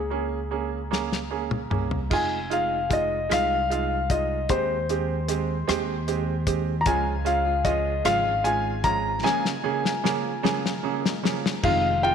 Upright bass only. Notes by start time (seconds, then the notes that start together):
Already playing: C#2
1.71 C2
2.11 F1
3.31 C2
4.49 D#2
5.69 D#2
6.86 C#2
8.05 G#1
11.63 F1